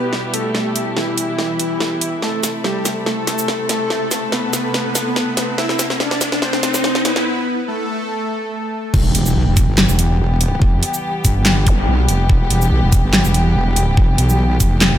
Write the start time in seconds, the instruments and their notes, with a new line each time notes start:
Already playing: string section B2 G3 E4 G4, supersaw synth B3 B4
0.13 snare
0.34 supersaw synth A3 A4, closed hi-hat
0.55 snare
0.76 closed hi-hat
0.97 supersaw synth E3 E4, snare
1.18 closed hi-hat
1.39 snare
1.59 closed hi-hat
1.80 snare
2.01 closed hi-hat
2.22 string section C3 A3 A4, supersaw synth A3 A4, snare, riser
2.43 snare, closed hi-hat, shaker
2.64 supersaw synth G3 G4, snare
2.85 snare, closed hi-hat, shaker
3.06 supersaw synth A3 A4, snare
3.27 snare, closed hi-hat
3.38 shaker
3.48 snare
3.69 supersaw synth A3 A4, snare, closed hi-hat
3.90 snare
4.11 snare, closed hi-hat, shaker
4.32 supersaw synth B3 B4, snare
4.53 snare, closed hi-hat, shaker
4.74 snare
4.95 snare, closed hi-hat, shaker
5.16 snare
5.37 snare, closed hi-hat
5.58 supersaw synth E4 E5, snare
5.69 snare
5.79 snare, closed hi-hat, shaker
5.90 snare
6.00 supersaw synth D4 D5, snare
6.11 snare
6.21 snare, closed hi-hat, shaker
6.32 snare
6.42 supersaw synth C4 C5, snare
6.53 snare
6.63 snare, closed hi-hat
6.74 snare, shaker
6.84 snare
6.95 snare
7.05 supersaw synth B3 B4, snare, closed hi-hat
7.16 snare
7.68 supersaw synth A3 A4
8.94 wobble bass E1, string section E3 G3 B3 G4, kick, crash, impact
9.15 wobble bass E1, closed hi-hat
9.26 shaker
9.36 wobble bass B1
9.47 wobble bass E1
9.57 kick, closed hi-hat, shaker
9.68 wobble bass G1
9.78 snare, clap
9.89 wobble bass E1, shaker
9.99 closed hi-hat
10.20 wobble bass E1
10.41 closed hi-hat
10.62 wobble bass F1, kick
10.83 closed hi-hat
10.94 shaker
11.25 wobble bass G1, kick, closed hi-hat, shaker
11.46 snare, clap
11.67 kick, closed hi-hat, zap
11.88 wobble bass B1
12.08 wobble bass F1, closed hi-hat
12.29 wobble bass E1, kick
12.50 wobble bass E1, closed hi-hat
12.62 shaker
12.71 wobble bass B1
12.82 wobble bass E1
12.92 kick, closed hi-hat, shaker
13.04 wobble bass G1
13.13 snare, clap
13.25 wobble bass E1, shaker
13.34 closed hi-hat
13.55 wobble bass E1
13.76 closed hi-hat
13.97 wobble bass F1, kick
14.18 wobble bass B1, closed hi-hat
14.29 shaker
14.60 wobble bass F1, kick, closed hi-hat, shaker
14.81 snare, clap
14.92 wobble bass E1